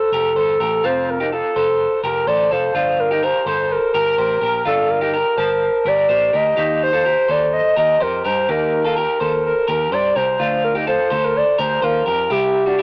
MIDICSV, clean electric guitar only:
0, 0, Header, 1, 2, 480
1, 0, Start_track
1, 0, Key_signature, -2, "minor"
1, 0, Tempo, 478088
1, 839, Time_signature, 4, 2, 24, 8
1, 12874, End_track
2, 0, Start_track
2, 0, Title_t, "Clean electric guitar"
2, 0, Program_c, 0, 27
2, 130, Note_on_c, 0, 70, 69
2, 139, Note_on_c, 0, 67, 56
2, 360, Note_off_c, 0, 70, 0
2, 364, Note_on_c, 0, 72, 68
2, 369, Note_off_c, 0, 67, 0
2, 373, Note_on_c, 0, 69, 60
2, 602, Note_off_c, 0, 72, 0
2, 606, Note_off_c, 0, 69, 0
2, 606, Note_on_c, 0, 70, 68
2, 613, Note_on_c, 0, 67, 52
2, 842, Note_off_c, 0, 70, 0
2, 843, Note_on_c, 0, 65, 94
2, 846, Note_off_c, 0, 67, 0
2, 850, Note_on_c, 0, 60, 73
2, 1179, Note_off_c, 0, 65, 0
2, 1183, Note_off_c, 0, 60, 0
2, 1206, Note_on_c, 0, 67, 73
2, 1214, Note_on_c, 0, 63, 54
2, 1322, Note_off_c, 0, 67, 0
2, 1326, Note_off_c, 0, 63, 0
2, 1329, Note_on_c, 0, 69, 72
2, 1335, Note_on_c, 0, 65, 55
2, 1564, Note_off_c, 0, 69, 0
2, 1566, Note_on_c, 0, 72, 80
2, 1567, Note_off_c, 0, 65, 0
2, 1576, Note_on_c, 0, 69, 61
2, 2013, Note_off_c, 0, 72, 0
2, 2019, Note_off_c, 0, 69, 0
2, 2044, Note_on_c, 0, 70, 75
2, 2053, Note_on_c, 0, 67, 57
2, 2280, Note_off_c, 0, 70, 0
2, 2284, Note_on_c, 0, 72, 78
2, 2286, Note_off_c, 0, 67, 0
2, 2292, Note_on_c, 0, 69, 62
2, 2509, Note_off_c, 0, 69, 0
2, 2521, Note_off_c, 0, 72, 0
2, 2521, Note_on_c, 0, 69, 71
2, 2530, Note_on_c, 0, 65, 54
2, 2748, Note_off_c, 0, 65, 0
2, 2756, Note_off_c, 0, 69, 0
2, 2760, Note_on_c, 0, 65, 85
2, 2767, Note_on_c, 0, 62, 66
2, 3097, Note_off_c, 0, 65, 0
2, 3101, Note_off_c, 0, 62, 0
2, 3122, Note_on_c, 0, 67, 68
2, 3127, Note_on_c, 0, 63, 57
2, 3236, Note_off_c, 0, 67, 0
2, 3241, Note_on_c, 0, 70, 69
2, 3242, Note_off_c, 0, 63, 0
2, 3248, Note_on_c, 0, 67, 54
2, 3479, Note_off_c, 0, 70, 0
2, 3483, Note_off_c, 0, 67, 0
2, 3483, Note_on_c, 0, 72, 86
2, 3487, Note_on_c, 0, 69, 67
2, 3932, Note_off_c, 0, 72, 0
2, 3934, Note_off_c, 0, 69, 0
2, 3961, Note_on_c, 0, 70, 75
2, 3965, Note_on_c, 0, 67, 60
2, 4194, Note_off_c, 0, 67, 0
2, 4196, Note_off_c, 0, 70, 0
2, 4200, Note_on_c, 0, 72, 74
2, 4206, Note_on_c, 0, 67, 60
2, 4428, Note_off_c, 0, 72, 0
2, 4432, Note_off_c, 0, 67, 0
2, 4432, Note_on_c, 0, 70, 72
2, 4444, Note_on_c, 0, 67, 53
2, 4668, Note_off_c, 0, 67, 0
2, 4672, Note_on_c, 0, 65, 95
2, 4675, Note_off_c, 0, 70, 0
2, 4680, Note_on_c, 0, 62, 73
2, 5013, Note_off_c, 0, 65, 0
2, 5018, Note_off_c, 0, 62, 0
2, 5031, Note_on_c, 0, 67, 69
2, 5037, Note_on_c, 0, 63, 55
2, 5148, Note_off_c, 0, 67, 0
2, 5153, Note_on_c, 0, 70, 69
2, 5157, Note_off_c, 0, 63, 0
2, 5160, Note_on_c, 0, 67, 53
2, 5395, Note_on_c, 0, 72, 76
2, 5396, Note_off_c, 0, 70, 0
2, 5399, Note_off_c, 0, 67, 0
2, 5401, Note_on_c, 0, 81, 58
2, 5848, Note_off_c, 0, 72, 0
2, 5851, Note_off_c, 0, 81, 0
2, 5877, Note_on_c, 0, 70, 71
2, 5883, Note_on_c, 0, 67, 58
2, 6107, Note_off_c, 0, 70, 0
2, 6110, Note_off_c, 0, 67, 0
2, 6111, Note_on_c, 0, 72, 74
2, 6122, Note_on_c, 0, 67, 58
2, 6350, Note_off_c, 0, 67, 0
2, 6350, Note_off_c, 0, 72, 0
2, 6355, Note_on_c, 0, 70, 64
2, 6362, Note_on_c, 0, 67, 55
2, 6581, Note_off_c, 0, 67, 0
2, 6593, Note_on_c, 0, 67, 81
2, 6597, Note_off_c, 0, 70, 0
2, 6601, Note_on_c, 0, 63, 60
2, 6934, Note_off_c, 0, 67, 0
2, 6938, Note_off_c, 0, 63, 0
2, 6958, Note_on_c, 0, 69, 71
2, 6964, Note_on_c, 0, 65, 52
2, 7075, Note_off_c, 0, 69, 0
2, 7080, Note_on_c, 0, 70, 64
2, 7082, Note_off_c, 0, 65, 0
2, 7087, Note_on_c, 0, 67, 51
2, 7313, Note_on_c, 0, 72, 86
2, 7319, Note_off_c, 0, 70, 0
2, 7323, Note_off_c, 0, 67, 0
2, 7323, Note_on_c, 0, 69, 59
2, 7767, Note_off_c, 0, 72, 0
2, 7772, Note_off_c, 0, 69, 0
2, 7795, Note_on_c, 0, 70, 71
2, 7803, Note_on_c, 0, 67, 61
2, 8029, Note_off_c, 0, 67, 0
2, 8032, Note_off_c, 0, 70, 0
2, 8036, Note_on_c, 0, 72, 72
2, 8041, Note_on_c, 0, 67, 56
2, 8273, Note_off_c, 0, 67, 0
2, 8274, Note_off_c, 0, 72, 0
2, 8278, Note_on_c, 0, 70, 70
2, 8285, Note_on_c, 0, 67, 55
2, 8510, Note_off_c, 0, 67, 0
2, 8519, Note_off_c, 0, 70, 0
2, 8522, Note_on_c, 0, 67, 92
2, 8531, Note_on_c, 0, 63, 77
2, 8859, Note_off_c, 0, 67, 0
2, 8864, Note_off_c, 0, 63, 0
2, 8881, Note_on_c, 0, 69, 75
2, 8889, Note_on_c, 0, 65, 55
2, 8998, Note_off_c, 0, 69, 0
2, 9002, Note_on_c, 0, 70, 71
2, 9004, Note_off_c, 0, 65, 0
2, 9014, Note_on_c, 0, 67, 56
2, 9235, Note_off_c, 0, 70, 0
2, 9240, Note_off_c, 0, 67, 0
2, 9240, Note_on_c, 0, 72, 75
2, 9244, Note_on_c, 0, 69, 58
2, 9691, Note_off_c, 0, 72, 0
2, 9693, Note_off_c, 0, 69, 0
2, 9717, Note_on_c, 0, 70, 74
2, 9725, Note_on_c, 0, 67, 57
2, 9958, Note_off_c, 0, 67, 0
2, 9958, Note_off_c, 0, 70, 0
2, 9962, Note_on_c, 0, 72, 76
2, 9970, Note_on_c, 0, 67, 60
2, 10195, Note_off_c, 0, 67, 0
2, 10197, Note_off_c, 0, 72, 0
2, 10201, Note_on_c, 0, 70, 72
2, 10207, Note_on_c, 0, 67, 52
2, 10433, Note_off_c, 0, 67, 0
2, 10437, Note_on_c, 0, 65, 85
2, 10440, Note_off_c, 0, 70, 0
2, 10445, Note_on_c, 0, 62, 64
2, 10777, Note_off_c, 0, 65, 0
2, 10781, Note_off_c, 0, 62, 0
2, 10793, Note_on_c, 0, 67, 74
2, 10802, Note_on_c, 0, 63, 56
2, 10909, Note_off_c, 0, 67, 0
2, 10913, Note_on_c, 0, 69, 67
2, 10914, Note_off_c, 0, 63, 0
2, 10918, Note_on_c, 0, 65, 56
2, 11147, Note_off_c, 0, 69, 0
2, 11148, Note_on_c, 0, 72, 87
2, 11159, Note_off_c, 0, 65, 0
2, 11159, Note_on_c, 0, 69, 63
2, 11605, Note_off_c, 0, 72, 0
2, 11610, Note_off_c, 0, 69, 0
2, 11633, Note_on_c, 0, 70, 78
2, 11643, Note_on_c, 0, 67, 57
2, 11867, Note_off_c, 0, 70, 0
2, 11871, Note_on_c, 0, 72, 75
2, 11879, Note_off_c, 0, 67, 0
2, 11883, Note_on_c, 0, 65, 63
2, 12105, Note_off_c, 0, 72, 0
2, 12109, Note_on_c, 0, 70, 73
2, 12113, Note_off_c, 0, 65, 0
2, 12117, Note_on_c, 0, 67, 56
2, 12338, Note_off_c, 0, 67, 0
2, 12350, Note_on_c, 0, 67, 93
2, 12354, Note_off_c, 0, 70, 0
2, 12359, Note_on_c, 0, 64, 78
2, 12693, Note_off_c, 0, 67, 0
2, 12698, Note_off_c, 0, 64, 0
2, 12713, Note_on_c, 0, 66, 74
2, 12723, Note_on_c, 0, 62, 59
2, 12833, Note_off_c, 0, 66, 0
2, 12837, Note_on_c, 0, 67, 70
2, 12841, Note_off_c, 0, 62, 0
2, 12843, Note_on_c, 0, 64, 56
2, 12874, Note_off_c, 0, 64, 0
2, 12874, Note_off_c, 0, 67, 0
2, 12874, End_track
0, 0, End_of_file